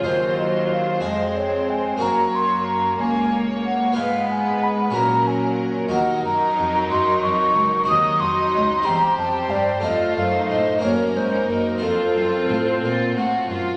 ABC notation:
X:1
M:6/8
L:1/16
Q:3/8=61
K:Gblyd
V:1 name="Flute"
c2 e2 f2 e2 d2 a2 | b2 c'2 b2 a4 g2 | f2 a2 _c'2 b2 a2 z2 | [K:Fphr] g2 b4 c'2 d'4 |
e'2 c'4 b2 =a2 =d2 | e2 f2 e2 d2 c2 B2 | =A6 z6 |]
V:2 name="Violin section"
c12 | d6 d6 | _c6 B6 | [K:Fphr] B12 |
e6 c6 | c6 B6 | F8- F2 z2 |]
V:3 name="Violin section"
F6 C6 | B,12 | _C6 D6 | [K:Fphr] E12 |
E6 =G6 | F3 E3 D3 E3 | F6 F2 G2 F2 |]
V:4 name="Viola section" clef=bass
G,6 A,6 | G,6 B,6 | A,6 G,6 | [K:Fphr] G,12 |
G,6 =G,6 | =A,6 B,6 | C8- C2 z2 |]
V:5 name="Harpsichord"
[Ec]6 [A,A]6 | [B,Gd]12 | [_CF_c]6 [DGB]6 | [K:Fphr] [EGB]12 |
[CGe]6 [C=Gc]6 | [=A,Fc]6 [B,DB]6 | [CF]12 |]
V:6 name="Harpsichord" clef=bass
E,,6 F,,6 | G,,6 D,,6 | A,,6 B,,6 | [K:Fphr] E,,2 G,,2 F,,2 G,,2 F,,2 D,,2 |
E,,2 F,,2 D,,2 =E,,2 F,,2 =G,,2 | F,,2 G,,2 =A,,2 G,,2 _A,,2 G,,2 | F,,2 G,,2 =A,,2 B,,2 A,,2 G,,2 |]
V:7 name="Cello section" clef=bass
E,,6 F,,6 | G,,6 D,,6 | A,,6 B,,6 | [K:Fphr] E,,2 G,,2 F,,2 G,,2 F,,2 D,,2 |
E,,2 F,,2 D,,2 =E,,2 F,,2 =G,,2 | F,,2 G,,2 =A,,2 G,,2 _A,,2 G,,2 | F,,2 G,,2 =A,,2 B,,2 A,,2 G,,2 |]